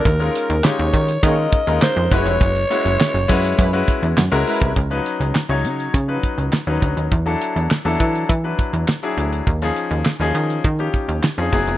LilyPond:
<<
  \new Staff \with { instrumentName = "Alto saxophone" } { \time 4/4 \key ees \minor \tempo 4 = 102 bes'4 des''4 ees''4 c''8 des''8~ | des''2.~ des''8 r8 | r1 | r1 |
r1 | }
  \new Staff \with { instrumentName = "Analog polysynth" } { \time 4/4 \key ees \minor r2 <bes aes' des''>16 r4 r16 <aes fes' des''>8 | r2 <aes fes' ces''>16 r4 r16 <aes fes' ces''>8 | r1 | r1 |
r1 | }
  \new Staff \with { instrumentName = "Grand piano" } { \time 4/4 \key ees \minor r16 <aes des' ees' f' bes'>8 r16 <aes des' ees' f' g'>8. r16 <aes des' ees' f' bes'>8 r16 <aes des' ees' f' bes'>8. <aes des' fes' ges' ces''>8~ | <aes des' fes' ges' ces''>16 r16 <aes des' fes' ges' des''>8. r16 <aes des' fes' ges' ces''>8 r16 <aes des' fes' ges' ces''>8. r16 <aes des' fes' ges' bes'>8. | r16 <f ges des' ees' ces''>8. r16 <ges des' ees' des''>8. r16 <f ges des' ees' ces''>8. r16 <ges des' ees' ces''>8. | r16 <fis d' e' a'>8. r16 <fis d' e' a'>8. r16 <fis d' e' b'>8. r16 <fis d' e' aes'>8. |
r16 <f des' ees' aes'>8. r16 <f des' ees' aes'>8. r16 <f des' ees' g'>8. r16 <f des' ees' aes'>16 <ges ces' fes' aes'>8 | }
  \new Staff \with { instrumentName = "Analog synth bass" } { \clef bass \time 4/4 \key ees \minor ees,8 r16 ees,16 r16 ees,16 ees8 ees8 r16 ees,16 r16 f,16 ges,,16 f,,16 | ges,,8 r16 ges,,16 r16 ges,,16 ges,8 ges,8 r16 fes,16 ges,16 des,16 r16 c,16 | des,8 r16 des,16 r16 des,16 des8 des8 r16 des,16 r16 ees,16 d,16 ees,16 | e,8 r16 e,16 r16 e,16 e8 e8 r16 e,16 r8 d,8 |
ees,8 r16 ees,16 r16 ees,16 ees8 ees8 r16 ees,16 r16 f,16 ges,,16 f,,16 | }
  \new DrumStaff \with { instrumentName = "Drums" } \drummode { \time 4/4 <hh bd>16 hh16 hh16 hh16 <hc sn>16 hh16 <hh bd>16 hh16 <hh bd>8 <hh bd>16 hh16 <hc sn>8 <hh bd>16 hh16 | <hh bd>16 hh16 hh16 hh16 <hc sn>16 hh16 <hh bd>16 hh16 <hh bd>16 hh16 <hh bd>16 hh16 <hc sn>16 hh16 hho16 <hh bd>16 | <hh bd>16 hh16 hh16 hh16 <hc sn>8 hh16 hh16 <hh bd>8 <hh bd>16 hh16 <hc sn>8 <hh bd>16 hh16 | <hh bd>8 hh16 hh16 <hc sn>8 <hh bd>16 hh16 <hh bd>8 <hh bd>16 hh16 <hc sn>16 hh16 hh16 hh16 |
<hh bd>16 hh16 hh16 hh16 <hc sn>16 hh16 hh16 hh16 <hh bd>16 hh16 <hh bd>16 hh16 <hc sn>16 hh16 <hh bd>16 hh16 | }
>>